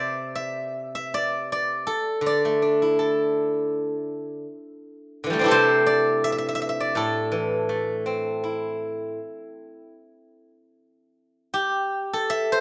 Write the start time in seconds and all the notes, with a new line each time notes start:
Already playing: C3 C5 D5 E5
0.35 E5
0.95 E5
1.14 D5
1.52 D5
1.87 A4
2.21 D3
2.26 D5
2.45 A3
2.62 D4
2.82 E4
2.99 A4
5.24 D3 E3
5.30 G3 A3
5.39 C4 D4
5.44 E4 G4
5.48 C3 A4 C5
5.86 D5
6.24 E5
6.32 E5
6.38 E5
6.49 E5
6.55 E5
6.62 E5
6.69 E5
6.80 D5
6.95 A2 A4
7.32 E3
7.69 A3
8.06 C4
8.44 E4
11.54 G4
12.13 A4
12.30 E5
12.52 D5